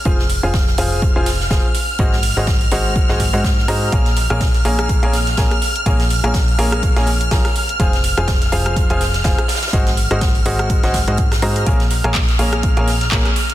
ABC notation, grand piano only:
X:1
M:4/4
L:1/16
Q:"Swing 16ths" 1/4=124
K:Bbm
V:1 name="Grand piano"
[F,FAcfa] z2 [F,FAcfa] z2 [F,FAcfa]3 [F,FAcfa] z2 [F,FAcfa] z3 | [A,GAceg] z2 [A,GAceg] z2 [A,GAceg]3 [A,GAceg] z [A,GAceg] z2 [GAceb]2 | [B,ABdfa] z2 [B,ABdfa] z2 [B,ABdfa]3 [B,ABdfa] z2 [B,ABdfa] z3 | [B,ABdfa] z2 [B,ABdfa] z2 [B,ABdfa]3 [B,ABdfa] z2 [F,ABdfa] z3 |
[F,FAcfa] z2 [F,FAcfa] z2 [F,FAcfa]3 [F,FAcfa] z2 [F,FAcfa] z3 | [A,GAceg] z2 [A,GAceg] z2 [A,GAceg]3 [A,GAceg] z [A,GAceg] z2 [GAceb]2 | [B,ABdfa] z2 [B,ABdfa] z2 [B,ABdfa]3 [B,ABdfa] z2 [B,ABdfa] z3 |]